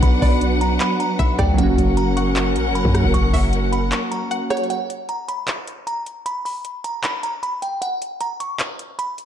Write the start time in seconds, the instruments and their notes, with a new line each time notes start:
Already playing: synth keys F#3 B3 D4 F#4, string section F#3 D4 B4 F#5
0.02 808-style bass B1, synth bell B5, kick, closed hi-hat
0.22 808-style bass B1, synth pluck D5, synth bell B5, kick, open hi-hat
0.41 closed hi-hat
0.61 synth bell A#5, closed hi-hat
0.80 synth bell B5, clap, closed hi-hat
1.00 synth bell A#5, closed hi-hat
1.19 808-style bass B1, synth pluck E5, synth bell B5, kick, closed hi-hat
1.39 808-style bass D2, synth pluck D5, synth bell G5, kick, cross-stick, closed hi-hat
1.54 synth keys F#3 A#3
1.58 808-style bass F#1, string section C#4 A#4 F#5, synth keys C#4, synth bell F#5, kick, closed hi-hat
1.63 synth keys F#4
1.78 808-style bass F#1, kick, closed hi-hat
1.97 synth bell A#5, closed hi-hat
2.17 synth pluck F#5, synth bell C#6, closed hi-hat
2.36 clap, closed hi-hat
2.56 808-style bass A#1, closed hi-hat
2.70 808-style bass F#1
2.75 synth bell B5, closed hi-hat
2.85 808-style bass F#2, kick
2.95 cross-stick, closed hi-hat
3.04 808-style bass F#1, kick
3.14 808-style bass F#1, synth bell C#6, kick, closed hi-hat
3.33 808-style bass F#1, synth pluck E5, synth bell C#6, kick, open hi-hat
3.53 closed hi-hat
3.72 synth bell B5, closed hi-hat
3.92 synth bell C#6, clap, closed hi-hat
4.11 synth bell A#5, closed hi-hat
4.31 synth pluck F#5, closed hi-hat
4.50 synth pluck C#5, synth bell F#5, cross-stick, closed hi-hat
4.57 closed hi-hat
4.63 closed hi-hat
4.70 synth bell F#5, closed hi-hat
4.90 closed hi-hat
5.09 synth bell A#5, closed hi-hat
5.28 synth bell B5, closed hi-hat
5.48 clap, closed hi-hat
5.67 closed hi-hat
5.87 synth bell A#5, closed hi-hat
6.06 closed hi-hat
6.26 synth bell B5, closed hi-hat
6.45 synth bell B5, open hi-hat
6.65 closed hi-hat
6.84 synth bell A#5, closed hi-hat
7.04 synth bell B5, clap, closed hi-hat
7.23 synth bell A#5, closed hi-hat
7.43 synth bell B5, closed hi-hat
7.62 synth bell G5, closed hi-hat
7.82 synth bell F#5, closed hi-hat
8.02 closed hi-hat
8.21 synth bell A#5, closed hi-hat
8.40 synth bell C#6, closed hi-hat
8.60 clap, closed hi-hat
8.79 closed hi-hat
8.99 synth bell B5, closed hi-hat
9.18 closed hi-hat